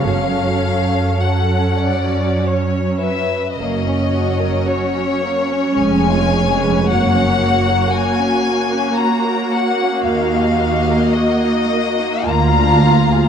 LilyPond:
<<
  \new Staff \with { instrumentName = "Violin section" } { \time 3/4 \key fis \minor \tempo 4 = 55 eis''4 fis''4 r8 e''8 | \key fis \major dis''4 cis''4 gis''4 | fis''4 gis''4 ais''8 fis''8 | eis''4 dis''4 ais''4 | }
  \new Staff \with { instrumentName = "Violin section" } { \time 3/4 \key fis \minor << { cis''4 a'8 d''8 cis''8 b'8 | \key fis \major cis''2.~ | cis''2. | dis''2 eis''4 | } \\ { a'4 r2 | ais16 cis'16 fis'16 ais'16 fis'16 cis'16 ais16 cis'16 cis'16 eis'16 gis'16 b'16 | ais16 cis'16 fis'16 ais'16 fis'16 cis'16 ais16 cis'16 fis'16 ais'16 fis'16 cis'16 | ais16 dis'16 fis'16 ais'16 fis'16 dis'16 ais16 dis'16 ais16 d'16 eis'16 gis'16 | } >> }
  \new Staff \with { instrumentName = "Viola section" } { \time 3/4 \key fis \minor << { cis'4 cis'2 | \key fis \major cis'2. | fis'2.~ | fis'2 eis'4 | } \\ { fis4 fis2 | fis2 gis4 | ais2.~ | ais2. | } >> }
  \new Staff \with { instrumentName = "Cello section" } { \clef bass \time 3/4 \key fis \minor fis,2. | \key fis \major fis,4 r4 eis,4 | fis,4 r2 | dis,4 r4 d,4 | }
  \new Staff \with { instrumentName = "Double bass section" } { \clef bass \time 3/4 \key fis \minor fis,,4 r2 | \key fis \major fis,,4 r4 eis,,4 | fis,,4 r2 | dis,4 r4 d,4 | }
>>